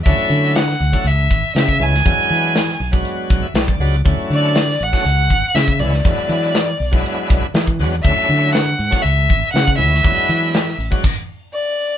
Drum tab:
CC |----------------|----------------|----------------|----------------|
HH |xxx-xxxxxxxxxxo-|xxx-xxo-x-x-xxox|xxx-xxxxxxxxxxo-|xxx-xxo-x-x-xxox|
SD |----oo------o--o|----oo------o---|----oo-o----o--o|----o-------o---|
BD |o------o--o--o--|o------o--o--o--|o------o--o--o--|o------o--o--o--|

CC |----------------|--------x-------|
HH |xxx-xxxxxxxxxxo-|xxx-xxo---------|
SD |----o--o----o--o|----oo----------|
BD |o------o--o--o--|o------oo-------|